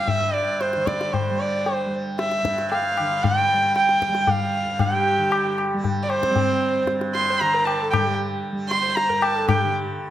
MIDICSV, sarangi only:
0, 0, Header, 1, 2, 480
1, 0, Start_track
1, 0, Tempo, 522193
1, 71, Time_signature, 3, 2, 24, 8
1, 9286, End_track
2, 0, Start_track
2, 0, Title_t, "Sarangi"
2, 0, Program_c, 0, 110
2, 76, Note_on_c, 0, 76, 88
2, 308, Note_on_c, 0, 74, 77
2, 322, Note_off_c, 0, 76, 0
2, 556, Note_on_c, 0, 72, 77
2, 570, Note_off_c, 0, 74, 0
2, 796, Note_on_c, 0, 74, 76
2, 810, Note_off_c, 0, 72, 0
2, 1038, Note_on_c, 0, 72, 69
2, 1051, Note_off_c, 0, 74, 0
2, 1287, Note_on_c, 0, 74, 76
2, 1301, Note_off_c, 0, 72, 0
2, 1600, Note_off_c, 0, 74, 0
2, 1600, Note_on_c, 0, 72, 76
2, 1767, Note_off_c, 0, 72, 0
2, 2014, Note_on_c, 0, 76, 80
2, 2458, Note_off_c, 0, 76, 0
2, 2493, Note_on_c, 0, 77, 85
2, 2972, Note_on_c, 0, 79, 100
2, 2986, Note_off_c, 0, 77, 0
2, 3452, Note_off_c, 0, 79, 0
2, 3459, Note_on_c, 0, 79, 93
2, 3870, Note_off_c, 0, 79, 0
2, 3870, Note_on_c, 0, 79, 62
2, 3941, Note_on_c, 0, 77, 79
2, 3955, Note_off_c, 0, 79, 0
2, 4418, Note_on_c, 0, 79, 83
2, 4432, Note_off_c, 0, 77, 0
2, 5135, Note_off_c, 0, 79, 0
2, 5541, Note_on_c, 0, 74, 73
2, 5596, Note_on_c, 0, 72, 95
2, 5610, Note_off_c, 0, 74, 0
2, 6321, Note_off_c, 0, 72, 0
2, 6569, Note_on_c, 0, 84, 88
2, 6802, Note_on_c, 0, 82, 79
2, 6816, Note_off_c, 0, 84, 0
2, 7033, Note_on_c, 0, 81, 75
2, 7046, Note_off_c, 0, 82, 0
2, 7260, Note_off_c, 0, 81, 0
2, 7266, Note_on_c, 0, 79, 75
2, 7496, Note_off_c, 0, 79, 0
2, 7990, Note_on_c, 0, 84, 88
2, 8230, Note_on_c, 0, 82, 82
2, 8244, Note_off_c, 0, 84, 0
2, 8477, Note_on_c, 0, 81, 85
2, 8491, Note_off_c, 0, 82, 0
2, 8712, Note_off_c, 0, 81, 0
2, 8718, Note_on_c, 0, 79, 73
2, 8937, Note_off_c, 0, 79, 0
2, 9286, End_track
0, 0, End_of_file